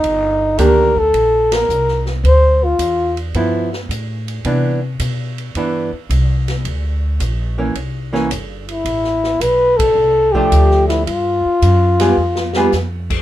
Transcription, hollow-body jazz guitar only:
X:1
M:4/4
L:1/8
Q:"Swing" 1/4=109
K:C
V:1 name="Hollow-body jazz guitar"
z2 [_E,_B,DG] z4 z | z4 [F,B,E] z3 | [E,B,D] z3 [E,B,D] z3 | z3 [E,_B,_D] z [E,B,D] z2 |
z4 z [F,A,DG]3 | z3 [G,B,F_A] z [G,B,FA] z2 |]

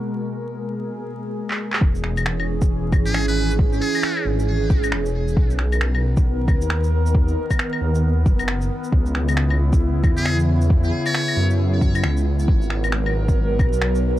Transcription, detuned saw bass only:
X:1
M:4/4
L:1/16
Q:"Swing 16ths" 1/4=135
K:Elyd
V:1 name="Detuned saw bass" clef=bass
z16 | E,,,8- E,,,2 F,,, G,,,4- G,,,- | G,,,2 z4 G,,,4 G,,,2 E,,,4 | B,,,8- B,,,2 C,, D,,4- D,,- |
D,,2 z4 D,,4 F,,,4 z2 | C,,8- C,,2 D,, E,,4- E,,- | E,,2 z4 F,,4 F,,2 C,,4 | G,,,8- G,,,2 A,,, B,,,4- B,,, |]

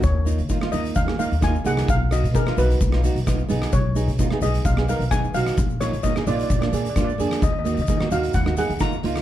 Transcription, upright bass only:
X:1
M:4/4
L:1/16
Q:1/4=130
K:Ebm
V:1 name="Upright bass" clef=bass
E,,3 E,3 E,,2 E,,3 E,,3 =C,,2 | =B,,,3 =B,,3 B,,,2 B,,,3 B,,,3 B,,,2 | C,,3 C,3 C,,2 C,,3 C,,3 C,,2 | B,,,3 B,,3 B,,,2 B,,,2 B,,2 A,,2 F,,2 |
E,,3 E,3 E,,2 E,,3 E,,3 D,,2 |]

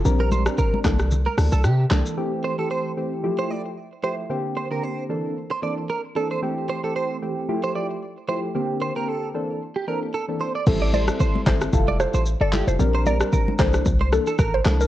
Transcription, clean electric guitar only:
X:1
M:4/4
L:1/16
Q:"Swing 16ths" 1/4=113
K:Aphr
V:1 name="Clean electric guitar"
z B c z B2 z3 B z A G2 z2 | z2 c A c2 z3 c d z3 c z | z2 c B c2 z3 c d z B z A c | z2 c A c2 z3 c d z3 c z |
z2 c B A2 z3 G B z A z c d | z d c z c2 z3 d z c z A G z | z c B z B2 z3 c z A B2 z2 |]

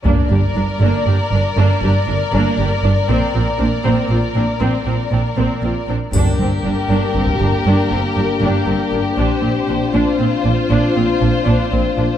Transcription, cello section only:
X:1
M:12/8
L:1/8
Q:3/8=79
K:Gm
V:1 name="Cello section" clef=bass
G,, G,, G,, G,, G,, G,, G,, G,, G,, G,, G,, G,, | B,, B,, B,, B,, B,, B,, B,, B,, B,, B,, B,, B,, | G,, G,, G,, G,, G,, G,, G,, G,, G,, G,, G,, G,, | B,, B,, B,, B,, B,, B,, B,, B,, B,, B,, B,, B,, |]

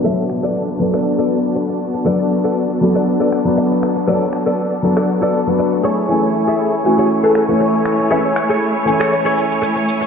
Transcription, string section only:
X:1
M:4/4
L:1/8
Q:"Swing 16ths" 1/4=119
K:Bdor
V:1 name="String section"
[B,DFA]8- | [B,DFA]8- | [B,DFA]6- [B,DFA] [A,Ecg]- | [A,Ecg]8- |
[A,Ecg]8 |]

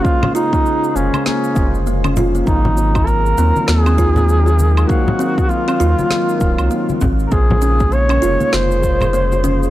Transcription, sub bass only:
X:1
M:4/4
L:1/16
Q:"Swing 16ths" 1/4=99
K:Bbm
V:1 name="Sub bass" clef=bass
z6 F,,, z3 F,,,6 | A,,,6 E,, z E,,8 | z6 E,, z3 E,,, C,, z2 A,,,2 | B,,,6 F,,, z F,,,8 |]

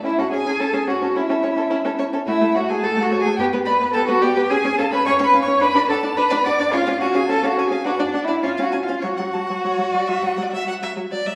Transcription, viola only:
X:1
M:4/4
L:1/16
Q:1/4=107
K:A
V:1 name="Viola"
C C C C C C C C C C C C C C C C | [K:C#phr] A, A, A, A, A, A, A, A, B, B, B, B, B, B, B, B, | C C C C C C C C D D D D D D D D | C C C C C C C C D D D D C C C C |
F, F, F, F, F, F, F, F, F, F, F, F, F, F, F, F, |]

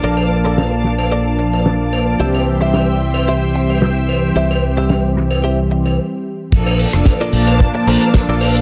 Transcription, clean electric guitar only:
X:1
M:4/4
L:1/16
Q:"Swing 16ths" 1/4=111
K:Bblyd
V:1 name="Clean electric guitar"
[ABd]2 z [ABd]3 z2 [ABd] z6 z | [Gce]2 z [Gce]3 z2 [Gce] z6 z | [Gce]2 z [Gce]3 z2 [Gce] z6 z | z4 z [FABd]2 z3 [FABc]2 z [FABd] z2 |]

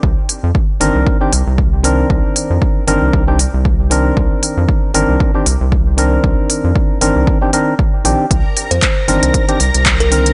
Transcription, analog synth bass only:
X:1
M:4/4
L:1/16
Q:"Swing 16ths" 1/4=116
K:Cm
V:1 name="Analog synth bass" clef=bass
C,, z2 F,, z2 G,,, C,, z2 C,, C,,4 z | C,, z2 F,, z2 G,,, C,, C,,2 z C,,4 z | C,, z2 F,, z2 G,,, C,, z2 C,, C,,4 z | C,, z2 F,, z2 G,,, C,, z6 B,,, z |
C,, z2 F,, z2 G,,, C,, z2 C,, C,,4 z |]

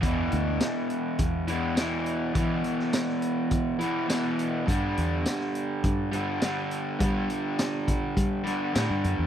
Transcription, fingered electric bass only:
X:1
M:4/4
L:1/16
Q:1/4=103
K:Em
V:1 name="Fingered electric bass" clef=bass
E,,2 D,,2 z4 E,,8 | E,2 z6 E,8 | G,,2 E,,2 z4 G,,8 | G,2 z6 G,4 A,, G,, F,, E,, |]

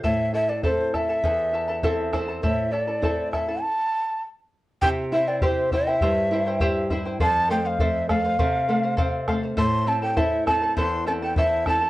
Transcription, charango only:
X:1
M:2/4
L:1/16
Q:1/4=101
K:Am
V:1 name="Charango"
[EAcea]2 [EAea] [EAa] [EAcea]2 [EAea] [EAa] | [EAcea]2 [EAea] [EAa] [EAcea]2 [EAea] [EAa] | [EAcea]2 [EAea] [EAa] [EAcea]2 [EAea] [EAa] | z8 |
[EGceg]2 [Eceg] [Ecg] [EGceg]2 [Eceg] [Ecg] | [EGceg]2 [Eceg] [Ecg] [EGceg]2 [Eceg] [Ecg] | [Acf]2 [Acf] [cf] [Acf]2 [Acf] [cf] | [Acf]2 [Acf] [cf] [Acf]2 [Acf] [cf] |
[EAcea]2 [EAea] [EAa] [EAcea]2 [EAea] [EAa] | [EAcea]2 [EAea] [EAa] [EAcea]2 [EAea] [EAa] |]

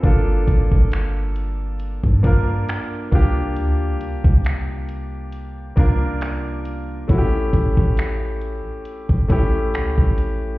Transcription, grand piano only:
X:1
M:4/4
L:1/8
Q:"Swing 16ths" 1/4=68
K:Cmix
V:1 name="Grand piano"
[B,DFA]3 z2 [B,DFB]2 [B,DFG]- | [B,DFG]2 z3 [B,DFB]2 z | [A,^CE^FG]3 z2 [A,CEG]2 z |]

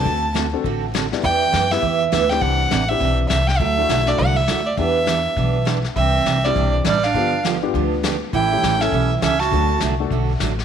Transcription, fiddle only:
X:1
M:4/4
L:1/8
Q:"Swing" 1/4=203
K:Dmix
V:1 name="Fiddle"
a2 z6 | g3 e2 z e g | f3 e2 z e g | e3 d f e2 d |
e6 z2 | e3 d2 z d =f- | =f2 z6 | g3 e2 z e a- |
a2 z6 |]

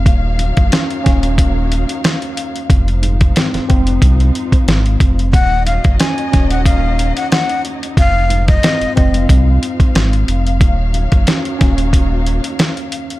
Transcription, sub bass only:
X:1
M:4/4
L:1/16
Q:"Swing 16ths" 1/4=91
K:Ebdor
V:1 name="Sub bass" clef=bass
E,,,3 G,,, z2 E,,,4- E,,, z4 z | F,,,4 z F,,, F,,,2 C,,2 z2 A,,,2 F,,,2 | E,,,3 G,,, z2 E,,,4- E,,, z4 z | F,,,4 z F,,, F,,,2 C,,2 z2 A,,,2 F,,,2 |
E,,,3 G,,, z2 E,,,4- E,,, z4 z |]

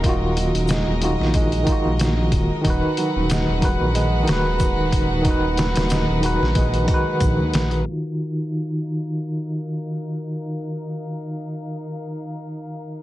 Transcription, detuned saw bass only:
X:1
M:4/4
L:1/16
Q:"Swing 16ths" 1/4=92
K:Ebm
V:1 name="Detuned saw bass" clef=bass
E,,,3 E,,,2 E,,,2 B,,,3 z B,,,3 E,,, z | ^D,,, z2 D,,,2 D,,,2 B,,,3 D,,,4 D,,, D,,,- | ^D,,,3 D,,,2 D,,,2 B,,,3 z2 B,,, ^D,, B,,,2 | z16 |
z16 |]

